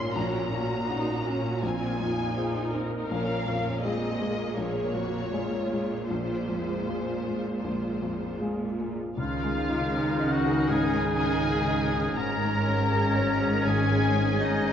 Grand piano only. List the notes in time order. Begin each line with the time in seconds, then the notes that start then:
Already playing: A#1 G#2 C#4 D#4 G#4
0.16 A#1
0.53 A#2
0.90 C#4 F#4
1.26 C#4
1.63 A#1
2.00 F2
2.37 C4 F4 G#4
2.74 C4
3.11 A#1
3.47 F2
3.84 G#3 F4 G#4
4.21 G#3
4.57 A#1
4.95 F2
5.33 G#3 F4 G#4
5.72 G#3
6.11 A#1
6.49 F2
6.88 G#3 F4 G#4
7.27 G#3
7.64 A#1
8.02 F2
8.41 G#3 F4 G#4
8.80 G#3
9.18 C#2
9.44 G#3
9.69 D#4
9.95 G#4
10.19 D#5
10.45 G#4
10.69 G#2
10.94 G#3
11.19 D#4
11.44 G#4
11.68 D#5
11.92 G#4
12.17 G#2
12.42 G#3
12.67 C#4
12.91 G#4
13.16 C#5
13.41 G#4
13.66 D#3
13.91 G#3
14.16 C#4
14.40 G#4
14.65 C#5